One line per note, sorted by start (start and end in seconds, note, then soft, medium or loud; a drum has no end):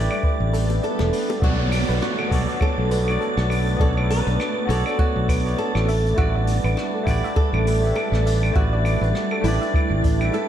0.00 1.38 G3 medium
0.00 1.38 A3 medium
0.00 1.44 A3 medium
0.00 1.39 D4 medium
0.00 1.44 E4 medium
0.00 1.45 G4 medium
0.00 1.44 B4 medium
0.00 1.44 D5 loud
0.00 1.41 A6 medium
0.11 0.23 D5 medium
0.11 claves medium
0.11 shaker medium
0.23 0.39 B4 medium
0.23 kick loud
0.23 swell medium
0.23 shaker soft
0.40 0.78 A1 medium
0.53 0.68 A4 medium
0.53 open hi-hat loud
0.53 shaker medium
0.70 high bongo soft
0.70 shaker medium
0.83 1.39 A4 medium
0.83 0.92 D5 medium
0.83 shaker medium
0.99 1.10 E1 medium
0.99 1.07 A4 medium
0.99 cross-stick medium
0.99 high bongo medium
1.12 1.22 B4 medium
1.12 open hi-hat medium
1.12 shaker medium
1.29 1.36 A4 medium
1.29 high bongo medium
1.29 shaker medium
1.39 1.83 B1 medium
1.39 5.84 A3 medium
1.39 2.27 B3 medium
1.39 5.84 B3 medium
1.39 5.84 D4 medium
1.39 2.28 F#4 medium
1.39 2.28 A4 medium
1.39 1.58 D5 medium
1.39 10.48 A6 medium
1.39 kick loud
1.39 downlifter medium
1.44 2.01 F#4 loud
1.44 2.29 C#5 medium
1.44 2.30 D5 loud
1.44 shaker medium
1.59 1.66 C#5 loud
1.72 open hi-hat loud
1.72 claves medium
1.72 shaker medium
1.89 1.99 B1 medium
1.89 1.96 B4 loud
1.89 shaker medium
2.02 2.62 F#4 medium
2.02 cross-stick medium
2.02 shaker medium
2.18 2.31 A4 medium
2.18 claves medium
2.28 2.45 B1 loud
2.28 3.03 B3 medium
2.28 3.03 F#4 medium
2.28 3.04 A4 medium
2.28 kick medium
2.28 open hi-hat loud
2.33 3.05 C#5 medium
2.33 3.06 D5 loud
2.33 shaker medium
2.48 2.55 D5 medium
2.48 shaker medium
2.61 3.47 A4 medium
2.61 2.77 C#5 medium
2.61 kick loud
2.61 claves medium
2.61 shaker medium
2.78 3.16 B1 medium
2.91 3.00 B4 medium
2.91 open hi-hat loud
2.91 shaker medium
3.04 3.75 B3 medium
3.04 3.76 F#4 medium
3.04 3.77 A4 medium
3.04 claves medium
3.09 3.78 C#5 medium
3.09 3.79 D5 medium
3.09 shaker medium
3.21 3.36 A4 medium
3.21 shaker medium
3.37 3.75 B1 loud
3.37 cross-stick medium
3.50 3.65 D5 medium
3.50 open hi-hat medium
3.50 claves medium
3.50 shaker medium
3.68 shaker medium
3.77 4.20 B1 loud
3.77 4.64 B3 medium
3.77 4.65 F#4 medium
3.77 4.66 A4 medium
3.77 3.95 D5 medium
3.77 kick loud
3.81 3.89 A4 loud
3.81 4.67 C#5 medium
3.81 4.68 D5 medium
3.81 shaker medium
3.97 4.04 C#5 loud
3.97 claves medium
4.10 4.70 B4 loud
4.10 open hi-hat loud
4.10 shaker medium
4.27 4.37 B1 medium
4.27 4.34 B4 loud
4.27 shaker medium
4.40 cross-stick medium
4.40 claves medium
4.40 shaker soft
4.57 4.69 A4 medium
4.65 4.82 B1 loud
4.65 5.40 B3 medium
4.65 5.41 F#4 medium
4.65 5.42 A4 medium
4.70 4.98 A4 loud
4.70 5.43 C#5 medium
4.70 5.44 D5 loud
4.70 open hi-hat medium
4.70 shaker medium
4.86 4.93 D5 medium
4.86 claves medium
4.86 shaker medium
4.99 5.58 F#4 medium
4.99 5.15 C#5 medium
4.99 kick loud
4.99 shaker soft
5.16 5.54 B1 medium
5.28 5.38 B4 medium
5.28 kick loud
5.28 open hi-hat medium
5.28 claves medium
5.28 shaker loud
5.44 5.86 B3 medium
5.44 5.86 F#4 medium
5.44 5.86 A4 medium
5.44 5.87 C#5 medium
5.44 5.87 D5 medium
5.44 shaker medium
5.58 5.73 A4 medium
5.58 6.17 A4 medium
5.58 shaker soft
5.75 6.13 A1 loud
5.75 cross-stick medium
5.75 claves medium
5.88 10.48 G3 medium
5.88 10.48 A3 medium
5.88 10.48 D4 medium
5.88 6.03 E5 medium
5.88 open hi-hat medium
5.88 shaker medium
6.06 shaker medium
6.14 6.58 A1 loud
6.14 7.04 G3 medium
6.14 7.02 A3 medium
6.14 7.03 E4 medium
6.14 6.73 F#4 loud
6.14 6.33 E5 medium
6.14 kick loud
6.14 claves medium
6.14 shaker medium
6.20 7.05 B4 medium
6.20 7.05 D5 loud
6.35 6.42 D5 medium
6.47 open hi-hat medium
6.47 shaker loud
6.64 6.74 A1 loud
6.64 6.71 B4 medium
6.64 claves medium
6.64 shaker medium
6.77 7.36 F#4 medium
6.77 cross-stick medium
6.77 shaker medium
6.94 7.06 A4 medium
7.03 7.20 A1 loud
7.03 7.78 A3 loud
7.03 7.79 E4 medium
7.03 7.80 G4 medium
7.03 kick medium
7.03 claves medium
7.03 shaker medium
7.08 7.81 B4 medium
7.08 7.82 D5 loud
7.08 open hi-hat medium
7.24 7.31 E5 medium
7.24 shaker medium
7.36 7.92 A4 loud
7.36 7.53 D5 medium
7.36 kick loud
7.36 shaker soft
7.53 7.91 A1 medium
7.53 claves medium
7.67 7.76 B4 medium
7.67 open hi-hat loud
7.67 shaker medium
7.80 8.51 A3 medium
7.80 8.52 E4 medium
7.80 8.52 G4 medium
7.85 8.53 B4 medium
7.85 8.54 E5 medium
7.85 shaker medium
7.95 8.55 A4 loud
7.95 8.11 A4 medium
7.95 claves medium
7.95 shaker soft
8.12 8.50 A1 medium
8.12 cross-stick medium
8.26 8.41 E5 medium
8.26 open hi-hat medium
8.26 shaker medium
8.43 claves medium
8.43 shaker medium
8.52 8.96 A1 loud
8.52 9.41 G3 medium
8.52 9.40 A3 medium
8.52 9.40 E4 medium
8.52 9.47 F#4 medium
8.52 8.71 E5 medium
8.52 kick loud
8.57 9.42 B4 medium
8.57 9.43 D5 loud
8.57 shaker medium
8.73 8.79 D5 medium
8.85 open hi-hat medium
8.85 claves medium
8.85 shaker medium
9.01 9.12 A1 medium
9.01 9.09 B4 medium
9.01 shaker medium
9.15 cross-stick medium
9.15 shaker medium
9.31 9.44 A4 medium
9.31 claves medium
9.41 9.57 A1 loud
9.41 10.16 A3 medium
9.41 10.17 E4 medium
9.41 10.29 E4 medium
9.41 10.17 G4 medium
9.41 open hi-hat medium
9.45 10.18 B4 medium
9.45 10.19 D5 loud
9.45 shaker loud
9.61 9.68 E5 medium
9.61 shaker medium
9.74 9.90 D5 medium
9.74 kick loud
9.74 claves medium
9.74 shaker medium
9.90 10.29 A1 medium
10.04 10.19 D5 medium
10.04 kick loud
10.04 open hi-hat medium
10.04 shaker loud
10.18 10.48 A3 medium
10.18 10.48 E4 medium
10.18 10.48 G4 medium
10.18 claves medium
10.18 shaker medium
10.23 10.48 B4 medium
10.23 10.48 E5 medium
10.33 10.48 A4 medium
10.33 10.43 E5 medium
10.33 shaker medium